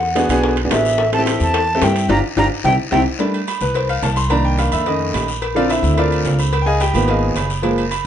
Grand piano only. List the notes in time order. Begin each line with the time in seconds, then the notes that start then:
0.16 B3 D4 F#4 G#4
0.30 B3 D4 F#4 G#4
0.65 B3 D4 F#4 G#4
1.12 C4 E4 G4 A4
1.19 C4 E4 G4 A4
1.75 C4 E4 G4 A4
1.81 C4 E4 G4 C5
2.09 D4 F4 G4
2.37 D4 F4 G4
2.65 C4 E4 G4
2.91 C4 E4 G4
3.19 G3 A3 D4
3.62 B4
3.76 C5
3.89 F5
4.03 A5
4.17 C6
4.30 D#3 A#3 D4 A#5
4.45 G5
4.59 F5
4.73 E5
4.86 D#3 A3 C#4 D#5
5.55 D3 C4 F4 A4 A#4 D5 F5
5.70 E4 E5
5.94 E5
5.98 F4 A#4 D5 F5
6.62 G5
6.66 G#4 D#5 F5 G#5
6.81 G4 G5
6.94 D#3 F3 A#3 B3
7.09 G#4 D#5 F5 G#5
7.62 F3 G#3 A#3